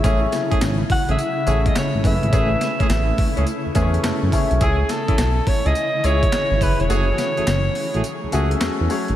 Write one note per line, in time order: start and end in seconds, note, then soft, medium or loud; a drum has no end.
0.00 4.57 C#3 medium
0.00 1.09 A3 medium
0.00 0.21 A3 medium
0.00 1.09 C#4 medium
0.00 1.09 E4 medium
0.04 0.27 A1 loud
0.04 4.57 A3 medium
0.04 0.21 C#4 medium
0.04 4.57 E4 medium
0.04 1.09 G#4 medium
0.04 0.21 G#4 loud
0.04 1.09 C#5 medium
0.04 kick loud
0.04 closed hi-hat medium
0.04 tambourine medium
0.32 snare medium
0.32 closed hi-hat medium
0.32 tambourine medium
0.51 0.56 G#1 soft
0.51 0.60 A3 medium
0.51 0.60 C#4 medium
0.51 0.60 G#4 medium
0.51 kick medium
0.51 closed hi-hat medium
0.61 0.83 G#1 loud
0.61 snare loud
0.61 clap loud
0.61 closed hi-hat medium
0.61 tambourine medium
0.90 1.08 F#5 loud
0.90 kick loud
0.90 open hi-hat medium
1.08 1.16 A1 medium
1.08 1.17 A3 medium
1.08 1.18 C#4 medium
1.08 1.18 G#4 medium
1.08 1.70 E5 loud
1.08 closed hi-hat medium
1.19 closed hi-hat medium
1.19 tambourine medium
1.46 1.69 A1 loud
1.46 1.99 A3 medium
1.46 1.64 A3 medium
1.46 1.99 C#4 medium
1.46 1.64 C#4 medium
1.46 1.99 E4 medium
1.46 1.64 G#4 medium
1.46 2.00 G#4 medium
1.46 2.00 C#5 medium
1.46 closed hi-hat medium
1.46 tambourine medium
1.66 1.77 D#5 loud
1.66 kick loud
1.66 closed hi-hat medium
1.76 2.08 C#5 medium
1.76 snare loud
1.76 clap loud
1.76 closed hi-hat medium
1.76 tambourine loud
1.94 2.02 G#1 medium
2.03 2.19 F#1 medium
2.03 2.30 A3 medium
2.03 2.30 C#4 medium
2.03 2.30 E4 medium
2.03 2.30 G#4 medium
2.03 2.31 B4 medium
2.03 3.77 E5 loud
2.03 kick medium
2.03 open hi-hat medium
2.03 tambourine medium
2.23 2.30 G#1 loud
2.23 closed hi-hat medium
2.32 2.55 A1 loud
2.32 3.38 A3 medium
2.32 2.50 A3 medium
2.32 2.50 C#4 medium
2.32 3.38 C#4 medium
2.32 3.38 E4 medium
2.32 2.50 G#4 loud
2.32 3.38 G#4 medium
2.32 3.38 B4 medium
2.32 kick loud
2.32 closed hi-hat medium
2.32 tambourine medium
2.61 snare medium
2.61 closed hi-hat medium
2.61 tambourine medium
2.79 2.84 A1 soft
2.79 2.89 A3 medium
2.79 2.89 C#4 medium
2.79 2.89 G#4 medium
2.79 kick loud
2.79 closed hi-hat medium
2.90 3.12 A1 loud
2.90 snare loud
2.90 clap loud
2.90 closed hi-hat medium
2.90 tambourine loud
3.18 kick loud
3.18 open hi-hat medium
3.36 3.45 C#2 medium
3.36 3.46 A3 medium
3.36 3.46 C#4 medium
3.36 3.46 G#4 medium
3.36 closed hi-hat medium
3.47 closed hi-hat medium
3.47 tambourine medium
3.66 3.70 E2 soft
3.75 3.98 E2 loud
3.75 3.92 A3 medium
3.75 4.28 A3 medium
3.75 4.28 C#4 medium
3.75 3.92 C#4 medium
3.75 4.28 E4 medium
3.75 3.93 G#4 medium
3.75 4.28 G#4 medium
3.75 3.84 B4 medium
3.75 4.02 E5 medium
3.75 kick medium
3.75 closed hi-hat medium
3.75 tambourine medium
3.82 4.31 C#5 loud
3.94 closed hi-hat medium
4.04 4.12 F#2 soft
4.04 4.57 A5 medium
4.04 snare loud
4.04 clap medium
4.04 closed hi-hat medium
4.04 tambourine loud
4.22 4.30 F#2 medium
4.32 4.59 A3 medium
4.32 4.59 C#4 medium
4.32 4.59 E4 medium
4.32 4.59 G#4 medium
4.32 4.59 C#5 medium
4.32 kick medium
4.32 open hi-hat medium
4.32 tambourine medium
4.51 4.59 B1 loud
4.51 closed hi-hat medium
4.60 4.84 C#2 loud
4.60 6.87 C#3 medium
4.60 6.87 E3 medium
4.60 4.78 C#4 medium
4.60 6.87 E4 medium
4.60 4.78 E4 medium
4.60 5.66 E4 medium
4.60 4.78 G#4 loud
4.60 4.93 G#4 loud
4.60 5.67 C#5 medium
4.60 5.67 G#5 medium
4.60 kick loud
4.60 closed hi-hat medium
4.60 tambourine medium
4.89 5.49 A4 loud
4.89 snare medium
4.89 closed hi-hat medium
4.89 tambourine medium
5.08 5.13 B1 soft
5.08 5.17 C#4 medium
5.08 5.17 E4 medium
5.08 5.17 G#4 medium
5.08 kick loud
5.08 closed hi-hat medium
5.18 5.41 B1 loud
5.18 snare loud
5.18 clap loud
5.18 closed hi-hat medium
5.18 tambourine loud
5.47 5.68 C#5 loud
5.47 kick loud
5.47 open hi-hat medium
5.65 5.73 C#2 medium
5.65 5.74 C#4 medium
5.65 5.74 E4 medium
5.65 5.75 G#4 medium
5.65 6.07 D#5 loud
5.65 closed hi-hat medium
5.75 closed hi-hat medium
5.75 tambourine medium
6.03 6.26 C#2 loud
6.03 6.21 C#4 medium
6.03 6.56 E4 medium
6.03 6.21 E4 medium
6.03 6.56 G#4 medium
6.03 6.21 G#4 medium
6.03 6.57 C#5 medium
6.03 6.64 C#5 loud
6.03 closed hi-hat medium
6.03 tambourine medium
6.23 kick medium
6.23 closed hi-hat medium
6.32 snare loud
6.32 clap medium
6.32 closed hi-hat medium
6.32 tambourine loud
6.51 6.59 G#1 medium
6.60 6.76 F#1 loud
6.60 6.87 E4 medium
6.60 6.87 G#4 medium
6.60 6.82 B4 medium
6.60 6.88 C#5 medium
6.60 kick medium
6.60 open hi-hat medium
6.60 tambourine medium
6.80 6.88 E1 medium
6.80 8.62 C#5 loud
6.80 closed hi-hat medium
6.89 7.12 F#1 loud
6.89 9.16 F#3 medium
6.89 7.94 A3 medium
6.89 7.06 A3 medium
6.89 9.16 A3 medium
6.89 7.95 C#4 medium
6.89 7.95 F#4 medium
6.89 7.07 F#4 medium
6.89 7.95 G#4 medium
6.89 9.16 G#4 medium
6.89 7.07 G#4 loud
6.89 7.95 C#5 medium
6.89 closed hi-hat medium
6.89 tambourine medium
7.18 snare medium
7.18 closed hi-hat medium
7.18 tambourine medium
7.37 7.41 F#1 soft
7.37 7.46 A3 medium
7.37 7.46 F#4 medium
7.37 7.46 G#4 medium
7.37 closed hi-hat medium
7.47 7.69 F#1 loud
7.47 snare loud
7.47 clap loud
7.47 closed hi-hat medium
7.47 tambourine loud
7.75 open hi-hat medium
7.94 8.02 A1 medium
7.94 8.03 A3 medium
7.94 8.03 F#4 medium
7.94 8.03 G#4 medium
7.94 closed hi-hat medium
8.04 closed hi-hat medium
8.04 tambourine medium
8.23 8.27 C#2 soft
8.32 8.55 C#2 loud
8.32 8.85 A3 medium
8.32 8.49 A3 medium
8.32 8.85 C#4 medium
8.32 8.50 F#4 medium
8.32 8.85 F#4 medium
8.32 8.50 G#4 medium
8.32 8.85 G#4 medium
8.32 8.85 E5 loud
8.32 closed hi-hat medium
8.32 tambourine medium
8.51 closed hi-hat medium
8.61 8.69 E2 soft
8.61 snare loud
8.61 clap medium
8.61 closed hi-hat medium
8.61 tambourine loud
8.80 8.88 E2 medium
8.89 9.16 A3 medium
8.89 9.16 C#4 medium
8.89 9.16 F#4 medium
8.89 9.16 G#4 medium
8.89 9.16 C#5 loud
8.89 open hi-hat medium
8.89 tambourine medium
9.08 9.16 G#1 medium
9.08 closed hi-hat medium